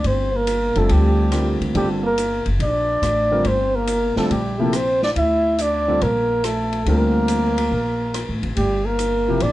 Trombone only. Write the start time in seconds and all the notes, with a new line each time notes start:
0.07 C4
0.34 A#3
0.78 A3
0.91 G3
1.75 G3
2.03 A#3
2.61 D4
3.46 C4
3.76 A#3
4.17 A3
4.30 G3
4.60 A3
4.73 C4
5.04 D4
5.16 E4
5.59 D4
6.03 A#3
6.44 A3
6.86 A#3
8.56 G3
8.85 A#3
9.43 D4